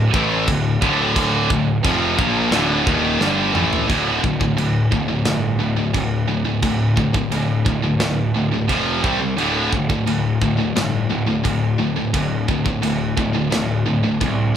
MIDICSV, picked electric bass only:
0, 0, Header, 1, 2, 480
1, 0, Start_track
1, 0, Key_signature, -1, "minor"
1, 0, Tempo, 683371
1, 814, Time_signature, 4, 2, 24, 8
1, 4656, Tempo, 688863
1, 10187, End_track
2, 0, Start_track
2, 0, Title_t, "Picked electric bass"
2, 0, Program_c, 0, 34
2, 0, Note_on_c, 0, 26, 86
2, 74, Note_off_c, 0, 26, 0
2, 96, Note_on_c, 0, 33, 87
2, 319, Note_off_c, 0, 33, 0
2, 332, Note_on_c, 0, 26, 77
2, 556, Note_off_c, 0, 26, 0
2, 574, Note_on_c, 0, 26, 99
2, 1025, Note_off_c, 0, 26, 0
2, 1053, Note_on_c, 0, 26, 84
2, 1276, Note_off_c, 0, 26, 0
2, 1293, Note_on_c, 0, 29, 97
2, 1516, Note_off_c, 0, 29, 0
2, 1535, Note_on_c, 0, 34, 97
2, 1757, Note_off_c, 0, 34, 0
2, 1766, Note_on_c, 0, 26, 88
2, 1992, Note_off_c, 0, 26, 0
2, 2013, Note_on_c, 0, 27, 94
2, 2236, Note_off_c, 0, 27, 0
2, 2245, Note_on_c, 0, 31, 102
2, 2472, Note_off_c, 0, 31, 0
2, 2483, Note_on_c, 0, 33, 96
2, 2711, Note_off_c, 0, 33, 0
2, 2734, Note_on_c, 0, 26, 96
2, 2946, Note_off_c, 0, 26, 0
2, 2976, Note_on_c, 0, 26, 83
2, 3188, Note_off_c, 0, 26, 0
2, 3206, Note_on_c, 0, 26, 87
2, 3422, Note_off_c, 0, 26, 0
2, 3454, Note_on_c, 0, 26, 84
2, 3667, Note_off_c, 0, 26, 0
2, 3684, Note_on_c, 0, 31, 82
2, 3902, Note_off_c, 0, 31, 0
2, 3927, Note_on_c, 0, 26, 82
2, 4144, Note_off_c, 0, 26, 0
2, 4174, Note_on_c, 0, 26, 90
2, 4602, Note_off_c, 0, 26, 0
2, 4653, Note_on_c, 0, 26, 89
2, 5079, Note_off_c, 0, 26, 0
2, 5126, Note_on_c, 0, 26, 90
2, 5343, Note_off_c, 0, 26, 0
2, 5373, Note_on_c, 0, 26, 88
2, 5587, Note_off_c, 0, 26, 0
2, 5600, Note_on_c, 0, 26, 81
2, 5819, Note_off_c, 0, 26, 0
2, 5848, Note_on_c, 0, 26, 80
2, 6063, Note_off_c, 0, 26, 0
2, 6092, Note_on_c, 0, 29, 84
2, 6306, Note_off_c, 0, 29, 0
2, 6336, Note_on_c, 0, 36, 88
2, 6548, Note_off_c, 0, 36, 0
2, 6571, Note_on_c, 0, 26, 90
2, 6785, Note_off_c, 0, 26, 0
2, 6814, Note_on_c, 0, 26, 78
2, 7026, Note_off_c, 0, 26, 0
2, 7051, Note_on_c, 0, 26, 90
2, 7265, Note_off_c, 0, 26, 0
2, 7293, Note_on_c, 0, 26, 81
2, 7506, Note_off_c, 0, 26, 0
2, 7534, Note_on_c, 0, 31, 94
2, 7747, Note_off_c, 0, 31, 0
2, 7774, Note_on_c, 0, 26, 85
2, 7987, Note_off_c, 0, 26, 0
2, 8015, Note_on_c, 0, 26, 81
2, 8440, Note_off_c, 0, 26, 0
2, 8496, Note_on_c, 0, 26, 88
2, 8921, Note_off_c, 0, 26, 0
2, 8974, Note_on_c, 0, 26, 86
2, 9187, Note_off_c, 0, 26, 0
2, 9214, Note_on_c, 0, 26, 90
2, 9428, Note_off_c, 0, 26, 0
2, 9453, Note_on_c, 0, 26, 80
2, 9668, Note_off_c, 0, 26, 0
2, 9694, Note_on_c, 0, 26, 89
2, 9909, Note_off_c, 0, 26, 0
2, 9938, Note_on_c, 0, 36, 84
2, 10151, Note_off_c, 0, 36, 0
2, 10187, End_track
0, 0, End_of_file